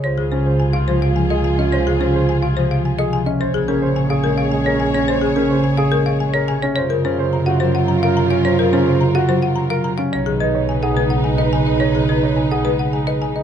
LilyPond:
<<
  \new Staff \with { instrumentName = "Marimba" } { \time 3/4 \key des \major \tempo 4 = 107 des''16 aes'16 c''16 r16 aes''16 f''16 c''16 f''16 aes''16 ees''16 aes''16 ees''16 | des''16 aes'16 c''16 r16 aes''16 f''16 c''16 f''16 aes''16 ees''16 aes''16 ees''16 | c''16 aes'16 bes'16 r16 aes''16 f''16 bes'16 f''16 aes''16 des''16 aes''16 des''16 | c''16 aes'16 bes'16 r16 aes''16 f''16 bes'16 f''16 aes''16 des''16 aes''16 des''16 |
des''16 bes'16 c''16 r16 bes''16 ges''16 c''16 ges''16 bes''16 f''16 bes''16 f''16 | des''16 bes'16 c''16 r16 bes''16 ges''16 c''16 ges''16 bes''16 f''16 bes''16 f''16 | des''16 aes'16 ces''16 r16 aes''16 ges''16 ces''16 ges''16 aes''16 ees''16 aes''16 ees''16 | des''16 aes'16 ces''16 r16 aes''16 ges''16 ces''16 ges''16 aes''16 ees''16 aes''16 ees''16 | }
  \new Staff \with { instrumentName = "Grand piano" } { \time 3/4 \key des \major c''16 r16 des'16 c''16 r16 f'16 r8. aes'16 r16 des'16 | c''16 r16 des'16 c''16 r16 f'16 r8. aes'16 r16 des'16 | c''16 r16 des'16 c''16 r16 aes'16 r8. bes'16 r16 des'16 | c''16 r16 des'16 c''16 r16 aes'16 r8. bes'16 r16 des'16 |
c''16 r16 des'16 c''16 r16 ges'16 r8. bes'16 r16 des'16 | c''16 r16 des'16 c''16 r16 ges'16 r8. bes'16 r16 des'16 | des''16 r16 ees'16 des''16 r16 aes'16 r8. ces''16 r16 ees'16 | des''16 r16 ees'16 des''16 r16 aes'16 r8. ces''16 r16 ees'16 | }
  \new Staff \with { instrumentName = "String section" } { \time 3/4 \key des \major <f' aes'>2.~ | <f' aes'>2~ <f' aes'>8. r16 | <aes' des''>2.~ | <aes' des''>2~ <aes' des''>8. r16 |
<f' bes'>2.~ | <f' bes'>2~ <f' bes'>8. r16 | <ees' ces''>2.~ | <ees' ces''>2~ <ees' ces''>8. r16 | }
  \new Staff \with { instrumentName = "French horn" } { \time 3/4 \key des \major f'2.~ | f'2~ f'8. r16 | des'2.~ | des'2~ des'8. r16 |
f'2.~ | f'2~ f'8. r16 | ees'2.~ | ees'2~ ees'8. r16 | }
  \new Staff \with { instrumentName = "Harp" } { \clef bass \time 3/4 \key des \major <ces' ees'>16 des16 c'8 c16 c'16 f8 f8 c8~ | c16 des16 c'8 c16 c'16 f8 f8 c8 | r16 des16 bes8 bes,8 aes8 aes4~ | aes16 des4~ des16 aes8 aes8 c8 |
r16 des16 c'8 c16 c'16 ges8 ges8 c8~ | c16 des16 c'8 c16 c'16 ges8 ges8 c8 | r16 ees16 ces'8 des16 ees'16 aes8 aes8 des8~ | des16 ees8. des8 aes8 aes8 des8 | }
  \new Staff \with { instrumentName = "Double bass" } { \clef bass \time 3/4 \key des \major des,2.~ | des,2. | bes,,2.~ | bes,,2. |
ges,2.~ | ges,2. | ces,2.~ | ces,2. | }
>>